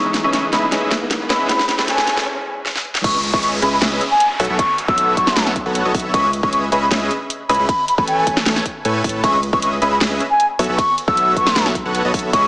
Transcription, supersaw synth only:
0.24 C#4 G#4 B4 D#5 E5
0.53 C#4 G#4 B4 D#5 E5
0.72 C#4 G#4 B4 D#5 E5
1.30 C#4 G#4 B4 D#5 E5
1.40 C#4 G#4 B4 D#5 E5
1.79 A3 A4 B4 C#5 G#5
2.08 A3 A4 B4 C#5 G#5
3.04 C#4 G#4 B4 D#5 E5
3.34 C#4 G#4 B4 D#5 E5
3.62 C#4 G#4 B4 D#5 E5
3.82 C#4 G#4 B4 D#5 E5
4.40 B3 F#4 A4 C#5 E5
4.50 B3 F#4 A4 C#5 E5
4.88 B3 F#4 A4 C#5 E5
5.17 B3 F#4 A4 C#5 E5
5.36 B3 F#4 A4 C#5 E5
5.66 B3 F#4 A4 C#5 F#5
5.85 B3 F#4 A4 C#5 D#5
5.94 B3 F#4 A4 C#5 E5
6.14 C#4 G#4 B4 D#5 E5
6.43 C#4 G#4 B4 D#5 E5
6.72 C#4 G#4 B4 D#5 E5
6.91 C#4 G#4 B4 D#5 E5
7.49 C#4 G#4 B4 D#5 E5
7.59 C#4 G#4 B4 D#5 E5
7.98 A3 A4 B4 C#5 G#5
8.27 A3 A4 B4 C#5 G#5
8.46 A3 A4 B4 C#5 G#5
8.85 A3 A4 B4 C#5 G#5
9.04 A3 A4 B4 C#5 A5
9.24 C#4 G#4 B4 D#5 E5
9.53 C#4 G#4 B4 D#5 E5
9.82 C#4 G#4 B4 D#5 E5
10.01 C#4 G#4 B4 D#5 E5
10.59 B3 F#4 A4 C#5 E5
10.69 B3 F#4 A4 C#5 E5
11.08 B3 F#4 A4 C#5 E5
11.37 B3 F#4 A4 C#5 E5
11.56 B3 F#4 A4 C#5 E5
11.85 B3 F#4 A4 C#5 F#5
12.05 B3 F#4 A4 C#5 D#5
12.14 B3 F#4 A4 C#5 E5
12.33 C#4 G#4 B4 D#5 E5

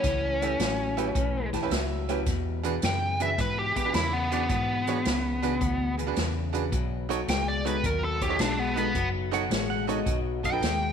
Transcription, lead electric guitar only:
Already playing: C#4
2.85 G5
3.22 E5
3.41 B4
3.59 G4
3.77 G4
3.95 E4
4.13 B3
4.33 B3
7.30 G5
7.48 D5
7.67 B4
7.86 A#4
8.04 A4
8.22 G4
8.40 D4
8.59 B3
8.78 B3
10.46 G5

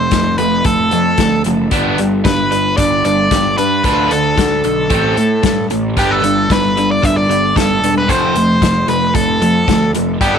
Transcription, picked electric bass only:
0.12 F1
0.39 F1
0.65 F1
0.91 F2
1.18 D2
1.45 F#1
1.72 G1
1.98 G1
2.25 G1
2.78 G1
3.04 G1
3.31 G1
3.58 G2
3.84 D2
4.11 D2
4.37 D2
4.64 B1
4.90 A1
5.17 A2
5.43 G2
5.71 A1
5.97 G1
6.23 G1
6.49 G1
7.03 G1
7.28 G1
7.56 G1
7.82 E1
8.09 F1
8.35 F1
8.61 F1
8.87 F1
9.15 F1
9.41 F2
9.68 D2
9.94 F1
10.20 G1

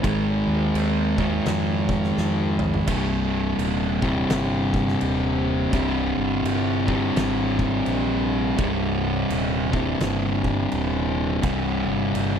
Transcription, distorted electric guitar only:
0.03 G#2 D#3 G#3
1.18 G#2 D#3 G#3
2.88 C2 G2 C3
4.02 C2 G2 C3
5.71 C2 G2 C3
6.86 C2 G2 C3
8.58 C2 G2 C3
9.72 C2 G2 C3
11.43 C2 G2 C3

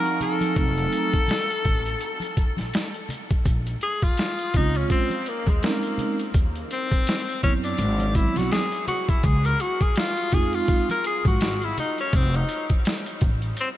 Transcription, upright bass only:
0.56 F1
1.65 A1
2.58 A#1
3.45 A#1
4.54 C#2
5.47 D#2
6.34 D#2
7.43 F#2
7.79 G#1
8.36 B1
9.24 C#2
10.33 F2
11.25 G#2
11.41 G#1
12.13 F1
13.22 A1

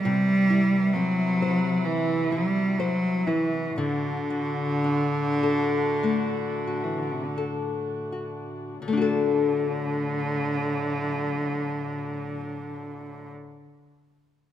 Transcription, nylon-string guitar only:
Already playing: B3 D4 G4 A4
0.05 C3
0.50 E4
0.96 C4
1.42 C5
2.32 E4
2.80 C5
3.27 E4
3.78 D3
4.30 F#4
4.84 D4
5.43 A4
6.03 A3
6.67 F#4
7.38 A4
8.12 F#4
8.82 D3
8.88 A3
8.93 D4
8.97 F#4
9.01 A4

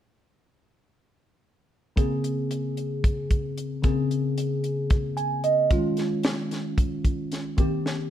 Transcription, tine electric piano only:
1.96 C#3 A#3 C4 G#4
3.83 C#3 A#3 C4 G#4
5.17 G#5
5.44 D#5
5.70 D#3 G#3 C#4 F4
7.57 D#3 A#3 C4 G4

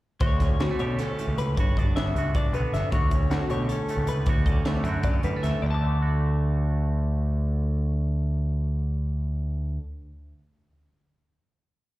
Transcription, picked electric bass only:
0.21 D2
0.60 D2
0.79 B2
1.28 C#2
1.36 C#2
1.58 G1
1.95 G1
2.14 C#2
2.52 B1
2.73 G1
2.93 D2
3.30 D2
3.50 B2
3.97 C#2
4.06 C#2
4.27 D2
4.66 D2
4.85 F#2
5.24 F#2
5.43 D2
5.62 D2

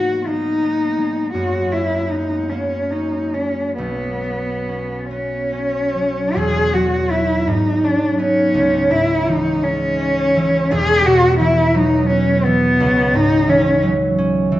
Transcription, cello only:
Already playing: F#4
0.27 D#4
1.34 F#4
1.72 E4
2.10 D#4
2.50 C#4
2.91 D#4
3.34 C#4
3.79 B3
5.11 C#4
6.36 G#4
6.74 F#4
7.11 E4
7.48 D#4
7.84 D4
8.18 C#4
8.91 E4
9.28 D#4
9.64 C#4
10.71 G#4
11.06 F#4
11.40 E4
11.75 D#4
12.10 C#4
12.46 B3
13.15 D#4
13.49 C#4

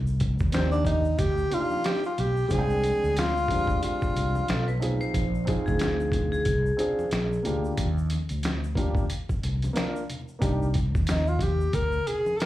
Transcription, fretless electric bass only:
Already playing: C2
0.41 D#2
1.19 D2
2.19 B1
2.51 C2
3.04 D2
4.16 C2
4.49 B1
5.15 A#1
5.68 D2
6.46 C2
7.12 A#1
7.46 D2
7.78 D#2
8.31 D2
9.43 C2
10.42 C2
10.95 D#2
11.73 D2

